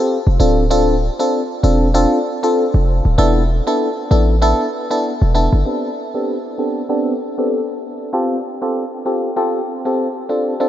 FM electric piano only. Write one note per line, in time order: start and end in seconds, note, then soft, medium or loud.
0.00 0.18 C4 medium
0.00 0.18 F4 medium
0.00 0.18 G4 medium
0.00 0.18 A4 medium
0.40 0.64 C4 medium
0.40 0.64 D4 medium
0.40 0.64 F4 medium
0.40 0.64 A4 medium
0.70 0.95 C4 medium
0.70 0.95 D4 medium
0.70 0.95 F4 medium
0.70 0.95 A4 loud
1.19 1.41 C4 medium
1.19 1.42 D4 medium
1.19 1.42 F4 medium
1.19 1.42 A4 medium
1.63 1.88 C4 medium
1.63 1.88 D4 medium
1.63 1.88 F4 medium
1.63 1.88 A4 medium
1.94 2.19 C4 medium
1.94 2.19 D4 medium
1.94 2.19 F4 medium
1.94 2.19 A4 loud
2.43 2.65 C4 medium
2.43 2.65 D4 medium
2.43 2.65 F4 medium
2.43 2.65 A4 medium
3.18 3.42 B3 medium
3.18 3.43 D4 medium
3.18 3.43 E4 medium
3.18 3.43 A4 loud
3.67 3.89 B3 medium
3.67 3.89 D4 medium
3.67 3.89 E4 medium
3.67 3.89 A4 medium
4.11 4.35 B3 medium
4.11 4.35 D4 medium
4.11 4.35 E4 medium
4.11 4.36 A4 medium
4.42 4.66 B3 medium
4.42 4.66 D4 medium
4.42 4.66 E4 medium
4.42 4.67 A4 loud
4.91 5.13 B3 medium
4.91 5.13 D4 medium
4.91 5.13 E4 medium
4.91 5.13 A4 medium
5.34 5.59 B3 medium
5.34 5.59 D4 medium
5.34 5.59 E4 medium
5.34 5.59 A4 medium
5.65 5.90 B3 medium
5.65 5.90 C4 medium
5.65 5.90 D4 medium
5.65 5.90 G4 medium
5.65 5.90 A4 medium
6.14 6.36 B3 medium
6.14 6.36 C4 medium
6.14 6.37 D4 medium
6.14 6.37 G4 medium
6.14 6.37 A4 medium
6.58 6.83 B3 medium
6.58 6.83 C4 medium
6.58 6.83 D4 medium
6.58 6.83 G4 medium
6.58 6.83 A4 medium
6.89 7.14 B3 medium
6.89 7.14 C4 medium
6.89 7.14 D4 medium
6.89 7.14 G4 medium
6.89 7.14 A4 loud
7.38 7.60 B3 medium
7.38 7.60 C4 medium
7.38 7.60 D4 medium
7.38 7.60 G4 medium
7.38 7.60 A4 medium
8.13 8.37 C4 medium
8.13 8.37 F4 medium
8.13 8.38 G4 medium
8.13 8.38 A4 medium
8.62 8.84 C4 medium
8.62 8.84 F4 medium
8.62 8.84 G4 medium
8.62 8.84 A4 medium
9.06 9.30 C4 medium
9.06 9.30 F4 medium
9.06 9.30 G4 medium
9.06 9.30 A4 medium
9.36 9.61 C4 medium
9.36 9.61 F4 medium
9.36 9.61 G4 medium
9.36 9.61 A4 loud
9.85 10.07 C4 medium
9.85 10.08 F4 medium
9.85 10.08 G4 medium
9.85 10.08 A4 medium
10.29 10.54 C4 medium
10.29 10.54 D4 medium
10.29 10.54 F4 medium
10.29 10.54 A4 medium
10.60 10.69 C4 medium
10.60 10.69 D4 medium
10.60 10.69 F4 medium
10.60 10.69 A4 loud